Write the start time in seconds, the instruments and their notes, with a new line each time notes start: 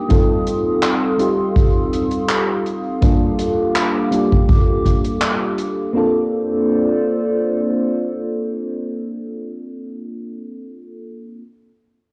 Already playing: fm electric piano G3 D4 D#4 F4 G4, ambient pad D#6
0.08 fm electric piano G3 C4 D#4 F4 A4, ambient pad A4 F5 C6, kick, closed hi-hat
0.47 closed hi-hat
0.83 clap, closed hi-hat
1.18 fm electric piano G3 C4 D#4 F4 G4, closed hi-hat
1.56 kick, closed hi-hat
1.93 closed hi-hat
2.11 closed hi-hat
2.29 clap, closed hi-hat
2.66 closed hi-hat
3.01 fm electric piano G3 A#3 D4 F4 A4, ambient pad G4 D6, kick, closed hi-hat
3.39 closed hi-hat
3.75 clap, closed hi-hat
4.11 fm electric piano G3 A#3 D4 F4 G4, closed hi-hat
4.32 kick
4.49 kick, closed hi-hat
4.85 kick, closed hi-hat
5.04 closed hi-hat
5.21 clap, closed hi-hat
5.58 closed hi-hat
5.93 fm electric piano A#3 C4 D4 F4, ambient pad A#3 F4 A4 C5 D5
5.97 fm electric piano A4